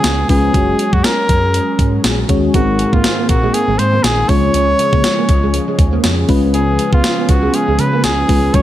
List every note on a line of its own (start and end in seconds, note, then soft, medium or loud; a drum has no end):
0.00 0.56 C#3 medium
0.00 0.50 F3 medium
0.00 0.29 G#3 medium
0.00 0.52 B3 medium
0.00 0.29 C#4 medium
0.00 2.50 C#4 medium
0.00 0.29 F4 medium
0.00 0.26 G#4 loud
0.00 0.50 G#4 medium
0.00 0.30 B4 loud
0.00 0.56 F5 medium
0.04 0.23 C#2 medium
0.04 snare loud
0.04 closed hi-hat medium
0.29 0.48 C#2 medium
0.29 0.45 G#3 medium
0.29 0.46 C#4 medium
0.29 0.46 F4 medium
0.29 0.94 G#4 loud
0.29 0.46 B4 medium
0.29 kick medium
0.29 open hi-hat medium
0.53 0.73 F#1 loud
0.53 2.52 F#3 medium
0.53 1.17 G#3 medium
0.53 2.52 G#3 medium
0.53 1.18 C#4 medium
0.53 1.18 F#4 medium
0.53 4.26 G#4 medium
0.53 1.18 C#5 medium
0.53 kick loud
0.53 closed hi-hat medium
0.79 closed hi-hat medium
0.93 1.01 F#2 medium
0.93 1.06 F#4 medium
0.93 kick medium
1.04 2.04 A#4 loud
1.04 snare loud
1.04 closed hi-hat loud
1.29 1.58 F#2 medium
1.29 kick medium
1.29 closed hi-hat medium
1.54 closed hi-hat medium
1.79 1.98 G#2 medium
1.79 kick medium
1.79 closed hi-hat medium
2.04 2.23 A#1 medium
2.04 snare loud
2.04 closed hi-hat loud
2.29 2.48 D#2 medium
2.29 2.46 G#3 medium
2.29 2.46 C#4 medium
2.29 2.46 F#4 medium
2.29 2.46 C#5 medium
2.29 kick medium
2.29 closed hi-hat medium
2.54 2.83 G#1 loud
2.54 3.25 G#2 medium
2.54 4.27 D#3 medium
2.54 3.18 G#3 medium
2.54 2.64 G#3 medium
2.54 4.27 A#3 medium
2.54 4.27 C4 medium
2.54 3.18 C4 medium
2.54 3.18 D#4 medium
2.54 2.95 F#4 medium
2.54 3.18 A#4 medium
2.54 kick loud
2.54 closed hi-hat medium
2.79 muted clean electric guitar stroke soft
2.79 closed hi-hat medium
2.93 3.01 G#1 medium
2.93 3.01 A#3 medium
2.93 3.29 F4 medium
2.93 kick medium
3.04 snare loud
3.04 closed hi-hat medium
3.19 3.26 A#3 medium
3.29 3.48 A#1 medium
3.29 3.55 F#4 medium
3.29 muted clean electric guitar stroke soft
3.29 kick medium
3.29 closed hi-hat medium
3.43 3.51 G#3 medium
3.54 3.80 G#4 medium
3.54 closed hi-hat medium
3.68 3.76 G#1 medium
3.68 3.76 G#3 medium
3.78 3.98 G#2 medium
3.78 4.05 C5 loud
3.78 muted clean electric guitar stroke soft
3.78 closed hi-hat medium
3.93 4.01 A#3 medium
4.03 4.23 A#1 medium
4.03 4.30 G#4 medium
4.03 snare loud
4.03 closed hi-hat medium
4.29 4.48 C#2 medium
4.29 5.00 C#3 medium
4.29 6.27 F3 medium
4.29 5.09 G#3 medium
4.29 4.38 G#3 medium
4.29 6.27 G#3 medium
4.29 5.10 C#4 medium
4.29 8.62 C#4 medium
4.29 5.10 F4 medium
4.29 8.62 G#4 medium
4.29 6.04 C#5 loud
4.29 5.10 C#5 medium
4.29 kick loud
4.29 open hi-hat medium
4.54 4.73 C#2 loud
4.54 4.63 C#4 medium
4.54 closed hi-hat medium
4.79 muted clean electric guitar stroke soft
4.79 closed hi-hat medium
4.93 5.01 C#3 medium
4.93 5.00 A#3 medium
4.93 kick medium
5.04 snare loud
5.04 closed hi-hat loud
5.18 5.26 A#3 medium
5.29 5.58 C#2 medium
5.29 muted clean electric guitar stroke soft
5.29 kick loud
5.29 closed hi-hat medium
5.43 5.51 G#3 medium
5.54 closed hi-hat medium
5.68 5.76 G#3 medium
5.79 5.98 D#2 medium
5.79 muted clean electric guitar stroke soft
5.79 kick medium
5.79 closed hi-hat medium
5.93 6.00 A#3 medium
6.04 6.23 F2 medium
6.04 snare loud
6.04 closed hi-hat loud
6.28 6.77 C#2 loud
6.28 7.00 C#3 medium
6.28 8.52 F3 medium
6.28 7.09 G#3 loud
6.28 6.38 G#3 medium
6.28 8.52 B3 medium
6.28 7.09 C#4 medium
6.28 7.10 F4 medium
6.28 7.10 B4 loud
6.28 kick loud
6.28 open hi-hat medium
6.54 6.63 C#4 medium
6.54 6.90 G#4 medium
6.54 closed hi-hat medium
6.79 muted clean electric guitar stroke soft
6.79 closed hi-hat medium
6.92 7.01 C#2 medium
6.92 7.00 B3 medium
6.92 7.31 F4 medium
6.92 kick medium
7.04 snare loud
7.04 closed hi-hat medium
7.18 7.25 B3 medium
7.29 7.48 C#2 medium
7.29 7.56 F#4 medium
7.29 muted clean electric guitar stroke soft
7.29 kick medium
7.29 closed hi-hat medium
7.43 7.50 G#3 medium
7.54 7.81 G#4 medium
7.54 closed hi-hat medium
7.68 7.76 C#2 medium
7.68 7.76 G#3 medium
7.79 8.06 C#3 medium
7.79 8.04 B4 medium
7.79 muted clean electric guitar stroke soft
7.79 closed hi-hat medium
7.93 8.01 A#3 medium
8.04 8.23 C#2 medium
8.04 8.56 G#4 loud
8.04 snare loud
8.04 closed hi-hat loud
8.28 8.48 C#2 medium
8.28 8.45 G#3 medium
8.28 8.39 G#3 medium
8.28 8.45 C#4 medium
8.28 8.46 F4 medium
8.28 8.46 B4 medium
8.28 kick medium
8.28 open hi-hat medium
8.53 8.62 F#1 loud
8.53 8.62 F#3 medium
8.53 8.62 G#3 medium
8.53 8.62 C#4 medium
8.53 8.62 F#4 medium
8.53 8.62 C#5 medium
8.53 8.62 C#5 loud
8.53 kick loud
8.53 closed hi-hat medium